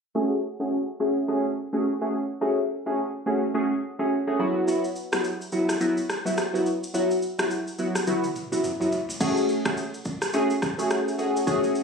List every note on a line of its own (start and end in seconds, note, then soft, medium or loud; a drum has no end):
0.15 0.33 A3 medium
0.15 0.33 C#4 medium
0.15 0.33 F#4 medium
0.15 0.33 G#4 medium
0.60 0.73 A3 medium
0.60 0.73 C#4 medium
0.60 0.73 F#4 medium
0.60 0.74 G#4 medium
1.00 1.17 A3 medium
1.00 1.18 C#4 medium
1.00 1.18 F#4 medium
1.00 1.18 G#4 medium
1.28 1.46 A3 medium
1.28 1.46 C#4 medium
1.28 1.46 F#4 medium
1.28 1.46 G#4 medium
1.73 1.86 A3 medium
1.73 1.87 C#4 medium
1.73 1.87 F#4 medium
1.73 1.87 G#4 medium
2.01 2.15 A3 medium
2.01 2.15 C#4 medium
2.01 2.15 F#4 medium
2.01 2.15 G#4 medium
2.41 2.59 A3 medium
2.41 2.59 C#4 medium
2.41 2.59 F#4 medium
2.41 2.59 G#4 medium
2.86 3.00 A3 medium
2.86 3.00 C#4 medium
2.86 3.00 F#4 medium
2.86 3.00 G#4 medium
3.26 3.44 A3 medium
3.26 3.44 C#4 medium
3.26 3.44 F#4 medium
3.26 3.44 G#4 medium
3.54 3.72 A3 medium
3.54 3.72 C#4 medium
3.54 3.72 F#4 medium
3.54 3.72 G#4 loud
3.99 4.13 A3 medium
3.99 4.13 C#4 medium
3.99 4.13 F#4 medium
3.99 4.13 G#4 medium
4.27 4.41 A3 medium
4.27 4.41 C#4 medium
4.27 4.38 F#4 medium
4.27 4.41 G#4 medium
4.39 4.66 F#3 medium
4.39 4.66 B3 medium
4.39 4.66 E4 medium
4.39 4.66 F#4 loud
4.68 4.85 F#3 medium
4.68 4.85 B3 medium
4.68 4.85 E4 medium
4.68 4.86 F#4 loud
4.68 shaker medium
4.84 shaker soft
4.96 shaker soft
5.12 5.26 F#3 medium
5.12 5.26 B3 medium
5.12 5.26 E4 medium
5.12 5.26 F#4 medium
5.12 cross-stick loud
5.12 shaker medium
5.24 shaker medium
5.41 shaker soft
5.52 5.70 F#3 medium
5.52 5.70 B3 medium
5.52 5.70 E4 medium
5.52 5.70 F#4 medium
5.52 shaker soft
5.69 cross-stick medium
5.69 shaker medium
5.80 5.98 F#3 medium
5.80 5.98 B3 medium
5.80 5.98 E4 medium
5.80 5.99 F#4 medium
5.80 shaker medium
5.97 shaker medium
6.10 cross-stick medium
6.10 shaker medium
6.25 6.39 F#3 medium
6.25 6.39 B3 medium
6.25 6.39 E4 medium
6.25 6.39 F#4 medium
6.25 shaker medium
6.37 cross-stick medium
6.37 shaker medium
6.53 6.67 F#3 medium
6.53 6.67 B3 medium
6.53 6.67 E4 medium
6.53 6.67 F#4 medium
6.53 shaker soft
6.66 shaker soft
6.84 shaker medium
6.94 7.12 F#3 medium
6.94 7.12 B3 medium
6.94 7.12 E4 medium
6.94 7.12 F#4 loud
6.94 shaker medium
7.11 shaker soft
7.22 shaker soft
7.39 7.52 F#3 medium
7.39 7.52 B3 medium
7.39 7.52 E4 medium
7.39 7.53 F#4 medium
7.39 cross-stick loud
7.39 shaker medium
7.51 shaker medium
7.68 shaker soft
7.78 7.96 F#3 medium
7.78 7.97 B3 medium
7.78 7.97 E4 medium
7.78 7.97 F#4 medium
7.78 shaker soft
7.95 cross-stick medium
7.95 shaker medium
8.07 8.25 F#3 medium
8.07 8.25 B3 medium
8.07 8.25 E4 medium
8.07 8.25 F#4 medium
8.07 high tom medium
8.07 shaker medium
8.24 high tom medium
8.24 shaker medium
8.36 mid tom medium
8.36 shaker medium
8.52 8.65 F#3 medium
8.52 8.66 B3 medium
8.52 8.66 E4 medium
8.52 8.66 F#4 medium
8.52 mid tom medium
8.52 shaker medium
8.64 mid tom medium
8.64 shaker medium
8.80 8.94 F#3 medium
8.80 8.94 B3 medium
8.80 8.94 E4 medium
8.80 8.94 F#4 medium
8.80 mid tom medium
8.80 shaker soft
8.92 floor tom medium
8.92 shaker medium
9.09 floor tom medium
9.09 shaker medium
9.20 9.61 A3 medium
9.20 9.61 C#4 medium
9.20 9.61 F#4 medium
9.20 9.62 G#4 loud
9.20 kick loud
9.20 crash medium
9.20 shaker medium
9.37 shaker soft
9.49 shaker soft
9.65 9.79 A3 medium
9.65 9.79 C#4 medium
9.65 9.79 F#4 medium
9.65 9.79 G#4 medium
9.65 kick medium
9.65 cross-stick loud
9.65 shaker medium
9.77 shaker medium
9.94 shaker soft
10.05 kick medium
10.05 shaker soft
10.22 cross-stick medium
10.22 shaker medium
10.33 10.51 A3 medium
10.33 10.51 C#4 medium
10.33 10.51 F#4 medium
10.33 10.52 G#4 loud
10.33 shaker medium
10.50 shaker medium
10.62 kick loud
10.62 cross-stick medium
10.62 shaker medium
10.78 11.16 A3 medium
10.78 11.16 C#4 medium
10.78 11.16 F#4 medium
10.78 11.16 G#4 medium
10.78 shaker medium
10.90 cross-stick medium
10.90 shaker medium
11.08 shaker soft
11.18 11.45 A3 medium
11.18 11.45 C#4 medium
11.18 11.45 F#4 medium
11.18 11.45 G#4 medium
11.18 shaker medium
11.37 shaker medium
11.47 11.83 A3 medium
11.47 11.83 C#4 medium
11.47 11.83 F#4 medium
11.47 11.83 G#4 loud
11.47 kick loud
11.47 shaker medium
11.64 shaker soft
11.75 shaker soft